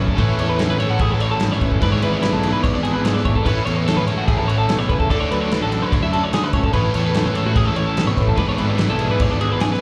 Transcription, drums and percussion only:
0.08 kick
0.18 kick, crash
0.39 crash
0.59 snare, crash
0.80 crash
0.99 kick, crash
1.20 crash
1.40 snare, crash
1.52 snare
1.61 kick, crash
1.72 kick
1.82 kick, crash
2.02 crash
2.23 snare, crash
2.43 crash
2.64 kick, crash
2.85 crash
3.05 snare, crash
3.17 snare
3.25 kick, crash
3.36 kick
3.46 kick, crash
3.67 crash
3.88 snare, crash
4.08 crash
4.28 kick, crash
4.49 crash
4.69 snare, crash
4.80 snare
4.90 kick, crash
5.00 kick
5.10 kick, crash
5.32 crash
5.52 snare, crash
5.72 crash
5.92 kick, crash
6.13 crash
6.33 snare, crash
6.53 kick, crash
6.64 kick
6.73 kick, crash
6.94 crash
7.14 snare, crash
7.35 crash
7.56 kick, crash
7.76 crash
7.97 snare, crash
8.17 kick, crash
8.28 kick
8.37 kick, crash
8.58 crash
8.78 snare, crash
8.99 crash
9.20 kick, crash
9.41 crash
9.60 snare, crash
9.73 snare

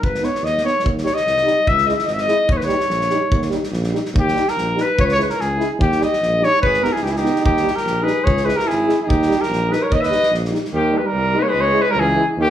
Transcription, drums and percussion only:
0.03 kick
0.15 snare
0.24 snare
0.35 snare
0.46 snare
0.58 snare
0.67 snare
0.80 snare
0.86 kick
0.98 snare
1.06 snare
1.17 snare
1.27 snare
1.37 snare
1.47 snare
1.67 kick
1.78 snare
1.89 snare
1.99 snare
2.08 snare
2.18 snare
2.28 snare
2.49 kick
2.61 snare
2.69 snare
2.80 snare
2.90 snare
3.01 snare
3.10 snare
3.32 kick
3.42 snare
3.51 snare
3.64 snare
3.73 snare
3.84 snare
3.95 snare
4.05 snare
4.16 kick
4.28 snare
4.37 snare
4.48 snare
4.58 snare
4.78 snare
4.99 kick
5.09 snare
5.20 snare
5.30 snare
5.41 snare
5.60 snare
5.81 kick
5.92 snare
6.02 snare
6.13 snare
6.23 snare
6.43 snare
6.63 kick
6.74 snare
6.85 snare
6.96 snare
7.06 snare
7.16 snare
7.26 snare
7.36 snare
7.46 kick
7.57 snare
7.68 snare
7.77 snare
7.87 snare
8.07 snare
8.27 kick
8.37 snare
8.49 snare
8.59 snare
8.70 snare
8.89 snare
9.10 kick
9.22 snare
9.31 snare
9.43 snare
9.53 snare
9.73 snare
9.92 kick
10.04 snare
10.12 snare
10.23 snare
10.34 snare
10.45 snare
10.55 snare
10.65 snare

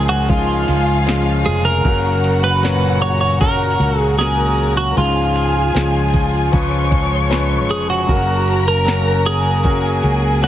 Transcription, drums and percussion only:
0.29 kick, ride
0.68 ride
1.07 snare, ride
1.46 ride
1.66 ride
1.85 kick, ride
2.24 ride
2.63 snare, ride
3.02 ride
3.41 kick, ride
3.80 ride
4.19 snare, ride
4.58 ride
4.78 ride
4.97 ride
5.36 ride
5.75 snare, ride
5.95 ride
6.14 kick, ride
6.53 kick, ride
6.92 kick, ride
7.31 snare, ride
7.70 ride
7.90 ride
8.09 kick, ride
8.48 ride
8.86 snare, ride
9.25 ride
9.64 kick, ride
10.04 ride
10.42 snare, ride

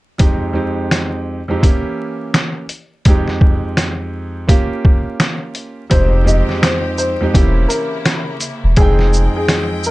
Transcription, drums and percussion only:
0.19 kick, closed hi-hat
0.91 snare, closed hi-hat
1.63 kick, closed hi-hat
2.34 snare, closed hi-hat
2.69 closed hi-hat
3.05 kick, closed hi-hat
3.28 snare
3.41 kick
3.77 snare, closed hi-hat
4.49 kick, closed hi-hat
4.85 kick
5.20 snare, closed hi-hat
5.55 closed hi-hat
5.91 kick, closed hi-hat
6.28 shaker
6.49 snare
6.63 snare, closed hi-hat
6.98 shaker
7.34 kick, closed hi-hat
7.70 closed hi-hat, shaker
8.06 snare, closed hi-hat
8.41 closed hi-hat, shaker
8.76 kick, closed hi-hat
8.99 snare
9.13 shaker
9.48 snare, closed hi-hat
9.84 shaker

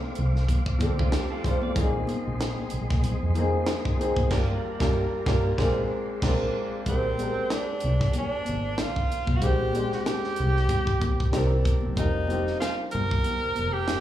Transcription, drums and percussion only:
0.02 high conga
0.15 closed hi-hat, muted conga, low conga
0.36 snare
0.48 kick, closed hi-hat, muted conga, high conga, low conga
0.66 kick
0.80 kick, closed hi-hat, muted conga, high conga
0.99 kick
1.12 snare, closed hi-hat
1.44 kick, closed hi-hat
1.62 high conga
1.75 kick, closed hi-hat, low conga
2.07 closed hi-hat, high conga
2.39 snare, closed hi-hat, muted conga
2.57 high conga
2.70 closed hi-hat, low conga
2.90 kick, snare
3.03 closed hi-hat, high conga, low conga
3.34 closed hi-hat, muted conga, high conga
3.66 snare, closed hi-hat, muted conga
3.85 kick
4.01 closed hi-hat
4.16 kick, high conga
4.30 kick, snare, crash
4.80 kick, snare
5.26 kick, snare
5.58 kick, snare
6.22 kick, snare, crash
6.86 kick, closed hi-hat, low conga
7.17 closed hi-hat, high conga
7.50 snare, closed hi-hat
7.80 closed hi-hat, muted conga, low conga
8.01 kick, snare
8.13 closed hi-hat, high conga, low conga
8.45 closed hi-hat, muted conga, high conga
8.78 snare, closed hi-hat
8.96 kick
9.10 closed hi-hat, muted conga
9.27 kick, high conga
9.41 kick, closed hi-hat, low conga
9.73 closed hi-hat, high conga
9.92 snare
10.06 snare, closed hi-hat
10.24 snare
10.36 closed hi-hat, muted conga, low conga
10.57 snare
10.69 kick, closed hi-hat, high conga, low conga
10.87 kick
11.00 kick, closed hi-hat, high conga
11.20 kick
11.33 snare, closed hi-hat, muted conga
11.64 kick, closed hi-hat, muted conga
11.81 high conga
11.96 kick, closed hi-hat, low conga
12.27 closed hi-hat, high conga
12.47 snare
12.62 snare, closed hi-hat
12.91 closed hi-hat, muted conga, low conga
13.11 kick
13.24 closed hi-hat, muted conga, high conga, low conga
13.55 closed hi-hat, high conga
13.88 snare, closed hi-hat

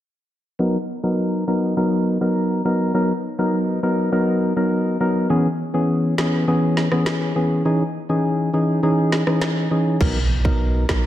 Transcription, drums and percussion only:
6.18 snare
6.77 snare
6.92 cross-stick
7.06 snare
9.12 snare
9.27 cross-stick
9.41 snare
10.01 kick, crash
10.45 kick
10.89 kick, snare

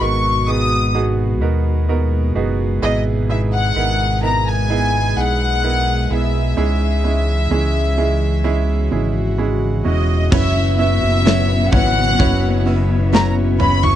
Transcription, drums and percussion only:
10.32 kick, floor tom, crash
11.27 snare
11.72 kick, floor tom
12.20 kick, floor tom
13.15 snare
13.60 floor tom
13.83 floor tom

